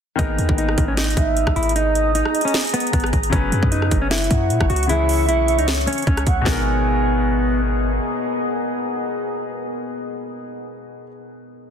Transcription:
0.16 G#1 D#3 A#3 B3 D#4 G#4 A#5 D#6, kick, closed hi-hat
0.20 A#4
0.38 D#2, closed hi-hat
0.49 G#1, kick
0.58 D#4, closed hi-hat
0.69 cross-stick
0.78 G#1, kick, closed hi-hat
0.88 C#4
0.97 D#4, snare, closed hi-hat
1.04 closed hi-hat
1.10 closed hi-hat
1.17 G#1 E5, kick, closed hi-hat
1.37 closed hi-hat
1.47 G#1, kick, cross-stick
1.56 G#1 E4, closed hi-hat
1.63 closed hi-hat
1.69 closed hi-hat
1.76 D#4 D#5, closed hi-hat
1.95 closed hi-hat
2.15 D#4, closed hi-hat
2.25 cross-stick
2.34 D#5, closed hi-hat
2.41 C#4, closed hi-hat
2.48 closed hi-hat
2.54 snare, closed hi-hat
2.59 closed hi-hat
2.65 closed hi-hat
2.67 closed hi-hat
2.69 closed hi-hat
2.74 B3, closed hi-hat
2.80 closed hi-hat
2.87 closed hi-hat
2.93 G#1 B3, kick, closed hi-hat
3.00 cross-stick, closed hi-hat
3.06 closed hi-hat
3.13 G#1, kick, closed hi-hat
3.23 closed hi-hat
3.30 F#1 C#3 F#3 B3 C#4 F#4 C#5 F#5 C#6, kick, closed hi-hat
3.35 B4
3.52 F#2, closed hi-hat
3.63 F#2, kick
3.72 D#4, closed hi-hat
3.82 cross-stick
3.91 F#1, kick, closed hi-hat
4.02 C#4
4.11 E4, snare, closed hi-hat
4.18 closed hi-hat
4.24 closed hi-hat
4.31 F#2 F#5, kick, closed hi-hat
4.50 A#2, closed hi-hat
4.61 F#1, kick, cross-stick
4.70 C#2 F#4, closed hi-hat
4.76 closed hi-hat
4.83 closed hi-hat
4.87 C#3 E3 G#3 E4 G#4 E5, closed hi-hat
4.92 G#4
5.09 open hi-hat
5.29 B1 E4, closed hi-hat
5.48 E5, closed hi-hat
5.59 C#2 D#4, closed hi-hat
5.68 snare, closed hi-hat
5.74 closed hi-hat
5.81 closed hi-hat
5.87 C#4, closed hi-hat
5.93 closed hi-hat
5.98 closed hi-hat
6.02 closed hi-hat
6.07 C#2 C#4, kick
6.17 cross-stick, closed hi-hat
6.27 C#2 F#5, kick, closed hi-hat
6.41 B2 G#3
6.46 G#1 B3 D#4 G#4 A#4 D#5, kick, snare, clap
6.51 A#4

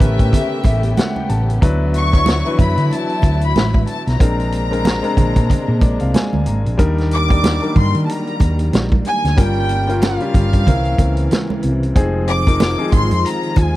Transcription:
Already playing: C#3 A3 B3 C#4 G4 A4 A#4 B4 E5
0.00 A1, kick, closed hi-hat, low conga
0.19 A2, kick, closed hi-hat
0.33 kick, closed hi-hat, low conga
0.64 A1 E5, kick, closed hi-hat, muted conga
0.83 closed hi-hat
0.97 F#5, snare, closed hi-hat, high conga
1.16 G5, high conga
1.29 A1 A5, closed hi-hat
1.50 closed hi-hat
1.61 D2 D3 F#3 D4 E4 B4, kick, closed hi-hat, muted conga
1.94 C#6, closed hi-hat
2.12 F#3 D4 E4 C#5, kick, closed hi-hat
2.26 snare, closed hi-hat, high conga
2.45 E3 D4 E4 B4, closed hi-hat
2.51 F#3
2.59 F#2 B5, kick, closed hi-hat, low conga
2.77 D3, closed hi-hat
2.91 A5, closed hi-hat, muted conga
3.09 closed hi-hat
3.22 D2, kick, closed hi-hat, muted conga
3.41 B5, closed hi-hat
3.56 A1, snare, closed hi-hat, high conga
3.74 kick, high conga
3.87 A5, closed hi-hat
4.07 B1 A#5, snare, closed hi-hat
4.19 A#1 C3 G#3 A#3 C4 D4 A#4, kick, closed hi-hat, muted conga
4.40 closed hi-hat
4.52 closed hi-hat
4.71 G#3 C4 D4 A#4, closed hi-hat
4.85 snare, closed hi-hat, high conga
5.03 G#3 C4 D4 A#4, closed hi-hat
5.17 A#1, kick, closed hi-hat, low conga
5.36 A#2, kick, closed hi-hat
5.50 kick, closed hi-hat, low conga
5.68 A#2
5.81 A#1 D5, kick, closed hi-hat, muted conga
6.00 C2 F5, closed hi-hat
6.14 G#5, snare, closed hi-hat, high conga
6.33 D2, high conga
6.46 G#1 A#5, closed hi-hat
6.66 A#1, closed hi-hat
6.77 D#2 D#3 G3 D4 D#4 A#4, kick, closed hi-hat, muted conga
6.98 snare, closed hi-hat
7.11 D6, closed hi-hat
7.29 G3 D4 D#4 A#4, kick, closed hi-hat
7.44 snare, closed hi-hat, high conga
7.61 F#3 D4 D#4 A#4, closed hi-hat
7.68 G3
7.76 G2 C6, kick, open hi-hat, low conga
7.95 D#3, closed hi-hat
8.05 A5
8.09 A#5, closed hi-hat
8.27 closed hi-hat
8.40 D#2, kick, closed hi-hat, muted conga
8.59 closed hi-hat
8.73 A#1, snare, closed hi-hat, high conga
8.92 kick, high conga
9.05 G#5, closed hi-hat
9.24 D2, snare, closed hi-hat
9.37 G1 C#3 G3 C#4 F4 A#4 G5, kick, closed hi-hat, muted conga
9.69 closed hi-hat
9.87 G3 C#4 F4 A#4, closed hi-hat
10.02 F5, snare, closed hi-hat, high conga
10.20 G3 C#4 F4 G4, closed hi-hat
10.34 G1, kick, closed hi-hat, low conga
10.53 G2, kick, closed hi-hat
10.67 C2 C3 C#3 E3 C4 C#4 A#4, kick, closed hi-hat, muted conga, low conga
10.85 closed hi-hat
10.98 C#2, kick, closed hi-hat, muted conga
11.17 closed hi-hat
11.31 snare, closed hi-hat, high conga
11.50 high conga
11.63 C2, closed hi-hat
11.83 closed hi-hat
11.95 F1 D#3 F3 G#3 C4 D#4 F4 G#4, kick, closed hi-hat, muted conga
12.28 D6, closed hi-hat
12.46 F3 C4 D#4 A#4, kick, closed hi-hat
12.60 snare, closed hi-hat, high conga
12.78 F3 C4 D#4 G#4
12.92 G#1 C6, kick, closed hi-hat, low conga
13.11 F2, closed hi-hat
13.26 A#5, closed hi-hat
13.43 closed hi-hat
13.56 D#2 G#5, kick, closed hi-hat, muted conga

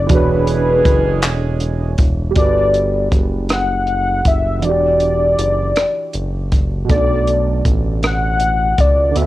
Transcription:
0.07 E1 E3 D4, kick, closed hi-hat
0.11 D3 G#3 C#4 F#4 G#4 B4
0.17 C#5
0.47 closed hi-hat
0.85 F#1, kick, closed hi-hat
1.22 E1, clap, closed hi-hat
1.60 closed hi-hat
1.98 E1, kick, closed hi-hat
2.31 G3 F#4
2.36 G1 A4 D5, kick, closed hi-hat
2.41 B4
2.74 closed hi-hat
3.12 F#1, kick, closed hi-hat
3.49 F#5, cross-stick, closed hi-hat
3.87 closed hi-hat
4.25 F#1 E5, kick, closed hi-hat
4.59 E3 D4, closed hi-hat
4.63 E1 F#4 D5
4.69 G4
5.00 closed hi-hat
5.39 F#1, closed hi-hat
5.76 F#1, cross-stick, closed hi-hat
6.13 F#1, closed hi-hat
6.52 kick, closed hi-hat
6.85 B2
6.89 B1 A3 D4 D5, kick, closed hi-hat
6.95 D5
7.27 closed hi-hat
7.65 A1, kick, closed hi-hat
8.03 F#5, cross-stick, closed hi-hat
8.40 closed hi-hat
8.78 C#2 D5, kick, closed hi-hat
9.11 D3 B3
9.16 D2 F#4 E5, closed hi-hat
9.22 E5

